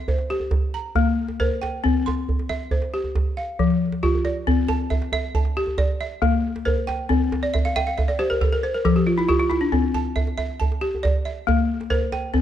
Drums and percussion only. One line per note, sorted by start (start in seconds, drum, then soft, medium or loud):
0.08 djembe bass medium
0.18 djembe slap soft
0.40 djembe tone medium
0.51 djembe slap medium
0.51 djembe bass medium
0.95 djembe slap medium
0.95 djembe tone medium
0.95 djembe bass medium
1.28 djembe slap soft
1.40 djembe bass medium
1.51 djembe tone soft
1.63 djembe slap medium
1.85 djembe slap soft
1.85 djembe bass medium
2.08 djembe slap medium
2.08 djembe tone medium
2.29 djembe slap soft
2.29 djembe bass medium
2.39 djembe slap soft
2.50 djembe slap soft
2.50 djembe tone medium
2.60 djembe slap soft
2.71 djembe bass medium
2.82 djembe slap soft
3.04 djembe slap soft
3.04 djembe tone soft
3.15 djembe slap medium
3.15 djembe bass medium
3.38 djembe slap soft
3.59 djembe bass medium
3.71 djembe slap soft
3.92 djembe slap soft
4.04 djembe slap soft
4.04 djembe bass medium
4.15 djembe slap soft
4.15 djembe tone medium
4.25 djembe slap medium
4.48 djembe bass medium
4.69 djembe slap medium
4.69 djembe tone medium
4.80 djembe slap soft
4.91 djembe bass medium
5.02 djembe slap medium
5.12 djembe tone medium
5.23 djembe slap soft
5.35 djembe bass medium
5.45 djembe slap medium
5.67 djembe tone medium
5.78 djembe slap medium
5.78 djembe bass medium
6.22 djembe slap medium
6.22 djembe tone medium
6.22 djembe bass medium
6.56 djembe slap medium
6.67 djembe bass medium
6.77 djembe tone soft
6.89 djembe slap medium
7.10 djembe bass medium
7.21 djembe slap soft
7.32 djembe slap medium
7.32 djembe tone medium
7.44 djembe slap soft
7.55 djembe bass medium
7.66 djembe slap soft
7.77 djembe tone medium
7.88 djembe slap soft
7.99 djembe bass medium
8.09 djembe slap soft
8.31 djembe tone medium
8.41 djembe slap medium
8.41 djembe bass medium
8.85 djembe slap medium
8.85 djembe tone medium
8.85 djembe bass medium
9.19 djembe slap medium
9.29 djembe bass medium
9.51 djembe slap medium
9.73 djembe bass medium
9.84 djembe slap soft
9.95 djembe slap medium
9.95 djembe tone medium
10.06 djembe slap soft
10.16 djembe bass medium
10.27 djembe slap soft
10.38 djembe tone medium
10.50 djembe slap soft
10.61 djembe bass medium
10.72 djembe slap medium
10.95 djembe tone soft
11.05 djembe slap medium
11.05 djembe bass medium
11.48 djembe slap medium
11.48 djembe tone medium
11.48 djembe bass medium
11.81 djembe slap medium
11.91 djembe bass medium
12.02 djembe tone soft
12.12 djembe slap medium
12.34 djembe bass medium